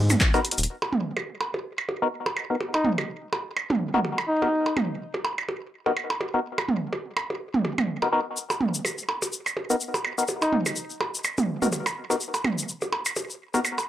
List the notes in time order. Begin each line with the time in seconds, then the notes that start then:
Already playing: G#2
0.10 mid tom, percussion blips, shaker
0.20 kick, clap, shaker
0.34 B3 D#4 F#4 A#4, percussion blips, shaker
0.45 closed hi-hat
0.51 closed hi-hat
0.58 D#1, closed hi-hat, shaker
0.63 closed hi-hat
0.82 percussion blips
0.93 mid tom
1.17 percussion blips
1.41 percussion blips
1.54 percussion blips
1.78 percussion blips
1.89 percussion blips
2.02 B3 D#4 F#4 A#4
2.26 percussion blips
2.37 percussion blips
2.50 B3 D#4 F#4 A#4
2.61 percussion blips
2.74 D#4, percussion blips
2.85 mid tom
2.98 percussion blips
3.33 percussion blips
3.57 percussion blips
3.70 mid tom, percussion blips
3.94 B3 D#4 F#4 A#4, mid tom
4.05 percussion blips
4.18 percussion blips
4.29 D#4
4.42 B3 D#4 F#4 A#4, percussion blips
4.66 percussion blips
4.77 mid tom, percussion blips
5.14 percussion blips
5.25 percussion blips
5.38 percussion blips
5.49 percussion blips
5.86 B3 D#4 F#4 A#4, percussion blips
5.97 percussion blips
6.10 percussion blips
6.21 percussion blips
6.34 B3 D#4 F#4 A#4
6.58 percussion blips
6.69 mid tom
6.93 percussion blips
7.17 percussion blips
7.30 percussion blips
7.54 mid tom
7.65 percussion blips
7.78 mid tom, percussion blips
8.02 B3 D#4 F#4 A#4, percussion blips
8.12 B3 D#4 F#4 A#4
8.37 shaker
8.50 percussion blips, shaker
8.61 mid tom
8.74 shaker
8.85 percussion blips, shaker
8.98 shaker
9.09 percussion blips
9.22 percussion blips, shaker
9.33 shaker
9.46 percussion blips, shaker
9.57 percussion blips
9.70 B3 D#4 F#4 A#4, shaker
9.80 shaker
9.94 percussion blips, shaker
10.05 percussion blips
10.18 B3 D#4 F#4 A#4, shaker
10.28 percussion blips, shaker
10.42 D#4, percussion blips, shaker
10.53 mid tom
10.66 percussion blips, shaker
10.76 shaker
10.90 shaker
11.01 percussion blips
11.15 shaker
11.24 percussion blips, shaker
11.38 mid tom, percussion blips, shaker
11.62 B3 D#4 F#4 A#4, mid tom, shaker
11.72 percussion blips, shaker
11.86 percussion blips, shaker
12.10 B3 D#4 F#4 A#4, percussion blips, shaker
12.20 shaker
12.34 percussion blips, shaker
12.44 mid tom, percussion blips
12.58 shaker
12.69 shaker
12.81 percussion blips, shaker
12.93 percussion blips
13.05 percussion blips, shaker
13.16 percussion blips, shaker
13.30 shaker
13.54 B3 D#4 F#4 A#4, percussion blips, shaker
13.65 percussion blips, shaker
13.78 percussion blips, shaker